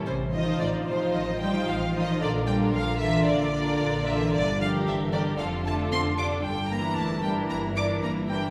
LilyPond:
<<
  \new Staff \with { instrumentName = "Violin section" } { \time 4/4 \key f \major \tempo 4 = 113 c''8 ees''8 d''8 c''8 ees''8 g''8 f''8 ees''8 | d''8 g''8 f''8 e''8 d''4. e''8 | d''8 f''8 e''8 d''8 f''8 a''8 c'''8 d'''8 | g''8 bes''8 a''8 g''8 bes''8 d'''8 bes''8 g''8 | }
  \new Staff \with { instrumentName = "Violin section" } { \time 4/4 \key f \major r8 <f' c''>4 <f' c''>4 <f' c''>4 <f' c''>8 | <f' bes'>8 <f' bes'>4 <f' bes'>4 <f' bes'>4 <f' bes'>8 | r8 <g' bes'>4 <g' bes'>8 <f' a'>8 <f' a'>4 <f' a'>8 | r8 <e' bes'>4 <e' bes'>4 <e' bes'>4 <e' bes'>8 | }
  \new Staff \with { instrumentName = "Viola section" } { \time 4/4 \key f \major r8 <f ees'>4 <f ees'>4 <f ees'>4 <f ees'>8 | <d d'>8 <d d'>4 <d d'>4 <d d'>4 <d d'>8 | r8 <d d'>4 <d d'>8 <d d'>8 <d d'>4 <d d'>8 | r8 <e d'>4 <e d'>4 <e d'>4 <e d'>8 | }
  \new Staff \with { instrumentName = "Cello section" } { \clef bass \time 4/4 \key f \major c8 ees8 d8 c8 ees8 g8 f8 ees8 | d8 g8 f8 e8 d4. e8 | d8 f8 e8 d8 f8 a8 c'8 d'8 | g8 bes8 a8 g8 bes8 d'8 bes8 g8 | }
  \new Staff \with { instrumentName = "Double bass section" } { \clef bass \time 4/4 \key f \major a,,4 a,,4 a,,4 a,,4 | bes,,4 bes,,4 bes,,4 bes,,4 | g,,4 g,,4 f,,4 f,,4 | g,,4 g,,4 g,,4 g,,4 | }
>>